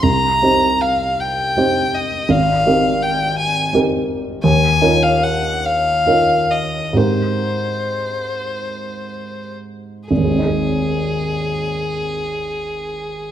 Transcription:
0.03 C2 A#5
0.42 C4 D#4 G4 C5
0.81 F5
1.20 G5
1.57 C4 D#4 G4 C5
1.95 D#5
2.29 G#1 F5
2.66 C4 D#4 G4 A#4
3.03 G5
3.38 G#5
3.73 C4 D#4 G4 A#4
4.44 D#2 G#5
4.81 C#4 D#4 F4 A#4
5.03 F5
5.23 F#5
5.65 F5
6.06 C#4 D#4 F4 A#4
6.51 D#5
6.93 G#2 C4 D#4 G4 A#4 C5
10.09 G#1 G#4
10.18 D#2
10.25 G#3
10.32 C4
10.38 D#4
10.46 G#4

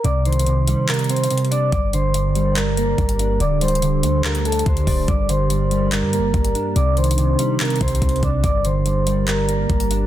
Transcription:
0.04 C2 C3 D5 D6, closed hi-hat
0.25 D#3 C5 C6, closed hi-hat
0.33 closed hi-hat
0.39 closed hi-hat
0.46 C3, closed hi-hat
0.68 G3, closed hi-hat
0.89 C3 A#4 A#5, clap, closed hi-hat
0.94 closed hi-hat
0.99 closed hi-hat
1.04 closed hi-hat
1.09 C4 C5 C6, closed hi-hat
1.16 closed hi-hat
1.24 closed hi-hat
1.30 C3, closed hi-hat
1.38 closed hi-hat
1.45 closed hi-hat
1.51 D4 D5 D6, closed hi-hat
1.72 G1 G2 G3 G4 A#4 D5 D6, kick, closed hi-hat
1.93 D3 C5 C6, closed hi-hat
2.14 G2, closed hi-hat
2.35 G3, closed hi-hat
2.56 G2 A#4 A#5, clap, closed hi-hat
2.77 A#3 A#4 A#5, closed hi-hat
2.98 G1 G2, kick, closed hi-hat
3.09 closed hi-hat
3.19 D4, closed hi-hat
3.40 D1 D3 D4 A4 D5 D6, closed hi-hat
3.61 G3 C5 C6, closed hi-hat
3.68 closed hi-hat
3.75 closed hi-hat
3.82 D3, closed hi-hat
4.03 D2 A3, closed hi-hat
4.24 D3 A#4 A#5, clap, closed hi-hat
4.35 closed hi-hat
4.45 D4 A4 A5, closed hi-hat
4.52 closed hi-hat
4.59 closed hi-hat
4.66 D2 D3 C5 C6, kick, closed hi-hat
4.77 closed hi-hat
4.87 D1 D5, kick, open hi-hat
5.08 G1 G2 G3 A#4 D5 D6, kick, closed hi-hat
5.29 D3 C5 C6, closed hi-hat
5.50 G2, closed hi-hat
5.71 G3, closed hi-hat
5.92 G2 A#4 A#5, clap, closed hi-hat
6.02 G2
6.13 A#3 A#4 A#5, closed hi-hat
6.18 G1
6.34 G1 G2, kick, closed hi-hat
6.45 closed hi-hat
6.55 D4, closed hi-hat
6.76 C2 C3 C4 D4 D#4 D5 D6, closed hi-hat
6.97 D#3 C5 C6, closed hi-hat
7.04 closed hi-hat
7.11 closed hi-hat
7.18 C3, closed hi-hat
7.39 G3, closed hi-hat
7.60 C3 A#4 A#5, clap, closed hi-hat
7.65 closed hi-hat
7.70 closed hi-hat
7.76 closed hi-hat
7.81 C2 C4 C5 C6, kick, closed hi-hat
7.88 closed hi-hat
7.95 closed hi-hat
8.02 C2 C3, kick, closed hi-hat
8.09 closed hi-hat
8.16 closed hi-hat
8.23 C2 D4 D5 D6, kick, closed hi-hat
8.44 G1 G2 G3 G4 A#4 D5 D6, kick, closed hi-hat
8.65 D3 C5 C6, closed hi-hat
8.86 G2, closed hi-hat
9.07 G3, closed hi-hat
9.28 G2 A#4 A#5, clap, closed hi-hat
9.49 A#3 A#4 A#5, closed hi-hat
9.70 G1 G2, kick, closed hi-hat
9.80 closed hi-hat
9.91 D4, closed hi-hat

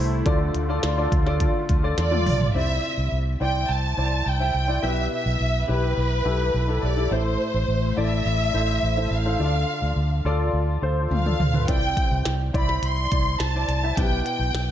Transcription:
Already playing: C2 C3 A3 E4 A4 C5 D5
0.25 D2 D3 F4 A4 D5, kick, closed hi-hat
0.55 D2, closed hi-hat
0.69 F4 A4 D5
0.83 D2, snare, closed hi-hat
0.97 F4 A4 D5
1.12 D2, kick, closed hi-hat
1.26 F4 A4 D5, snare
1.40 kick, closed hi-hat
1.69 D2, kick, closed hi-hat
1.83 F4 A4 D5
1.98 E2 D5, snare, closed hi-hat
2.11 F4 A4 D5, high tom
2.26 B1, mid tom, open hi-hat
2.41 floor tom
2.54 C2 C3 E4 C5 D5 E5
2.98 C2
3.12 C2
3.40 C2 E4 C5 D5 G5
3.69 C2 A5
3.97 C2 E4 C5 D5
4.26 C2 G5
4.39 E4 C5 E5
4.54 C2
4.67 E4 C5 D5
4.82 B1 B2 E4 G4 B4 E5
5.13 E5
5.26 B1
5.40 B1
5.67 B1 E4 G4 B4
5.97 B1
6.24 B1 E4 G4 A4
6.54 B1
6.68 E4 G4 A4
6.83 B1 D5
6.96 E4 G4 A4
7.11 A1 A2 E4 A4 C5
7.54 A1
7.68 A1
7.96 A1 E4 A4 D5 E5
8.25 A1
8.53 A1 E4 A4 C5
8.83 A1
8.96 E4 A4 C5
9.11 A1 F5
9.25 E4 A4 C5
9.39 D2 D3 F4 A4 D5
9.82 D2
9.96 D2
10.25 D2 F4 A4 D5
10.53 D2
10.82 D2 F4 A4 C5
11.11 D2 F5, high tom
11.25 F4 A4 D5, mid tom
11.40 D2, mid tom
11.54 F4 A4 B4, floor tom
11.68 C2 C3 E4 C5 D5 G5, kick, closed hi-hat
11.97 kick, closed hi-hat
12.12 C2
12.25 C2, snare, closed hi-hat
12.53 C2 E4 C5 D5 B5, kick, closed hi-hat
12.69 snare
12.82 C2 C6, closed hi-hat
13.12 C2 E4 C5 D5, kick, closed hi-hat
13.40 C2 A5, snare, closed hi-hat
13.55 E4 C5 D5
13.68 C2, closed hi-hat
13.83 E4 C5 E5
13.97 B1 B2 E4 G4 B4 G5, kick, closed hi-hat
14.26 G5, closed hi-hat
14.39 B1
14.54 B1, snare, closed hi-hat

